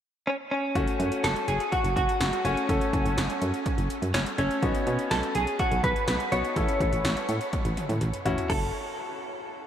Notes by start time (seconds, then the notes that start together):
0.27 C#4
0.51 C#4
0.75 F#1 A3 C#4 F#4, kick, closed hi-hat
0.88 closed hi-hat
1.00 F#2, closed hi-hat
1.12 closed hi-hat
1.24 F#1 A4, snare, closed hi-hat
1.36 closed hi-hat
1.48 F#1 G#4, closed hi-hat
1.60 closed hi-hat
1.72 F#4, kick, closed hi-hat
1.84 F#1, closed hi-hat
1.96 F#1 F#4, kick, closed hi-hat
2.09 closed hi-hat
2.21 F#1, snare, closed hi-hat
2.33 closed hi-hat
2.45 F#1 A3 C#4 F#4, closed hi-hat
2.57 closed hi-hat
2.69 F#1 A3 C#4 A4, kick, closed hi-hat
2.81 closed hi-hat
2.93 F#1, kick, closed hi-hat
3.05 F#1, closed hi-hat
3.17 F#1, snare, closed hi-hat
3.30 closed hi-hat
3.42 F#2, closed hi-hat
3.54 closed hi-hat
3.66 kick, closed hi-hat
3.78 F#1, closed hi-hat
3.90 closed hi-hat
4.02 F#2, closed hi-hat
4.14 F#1 C#4, snare, closed hi-hat
4.26 closed hi-hat
4.38 F#1 A3 C#4 A4, closed hi-hat
4.51 closed hi-hat
4.62 B1 B3 D#4 F#4, kick, closed hi-hat
4.75 closed hi-hat
4.87 B2, closed hi-hat
4.99 closed hi-hat
5.11 B1 A4, snare, closed hi-hat
5.23 closed hi-hat
5.35 B1 G#4, closed hi-hat
5.47 closed hi-hat
5.59 F#4, kick, closed hi-hat
5.71 B1, closed hi-hat
5.84 B1 B4, kick, closed hi-hat
5.96 closed hi-hat
6.08 B1, snare, closed hi-hat
6.20 closed hi-hat
6.32 B1 B3 D#4 F#4 C#5, closed hi-hat
6.45 closed hi-hat
6.56 A1 C#4 E4 A4, kick, closed hi-hat
6.68 closed hi-hat
6.80 A1, kick, closed hi-hat
6.93 A1, closed hi-hat
7.05 A1, snare, closed hi-hat
7.17 closed hi-hat
7.29 A2, closed hi-hat
7.41 closed hi-hat
7.53 kick, closed hi-hat, high tom
7.65 A1, closed hi-hat
7.77 closed hi-hat, mid tom
7.89 A2, closed hi-hat, mid tom
8.01 A1, closed hi-hat, mid tom
8.14 closed hi-hat
8.25 A1 C#4 E4 F#4, closed hi-hat, floor tom
8.38 closed hi-hat, floor tom
8.50 F#1 A4, kick, crash